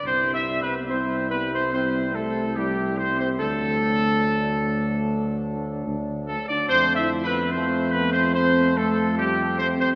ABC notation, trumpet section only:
X:1
M:4/4
L:1/16
Q:1/4=72
K:C
V:1 name="Trumpet section"
(3c2 e2 B2 c2 B c c2 A2 G2 c c | A12 z2 A d | (3c2 e2 B2 c2 B c c2 A2 G2 c c |]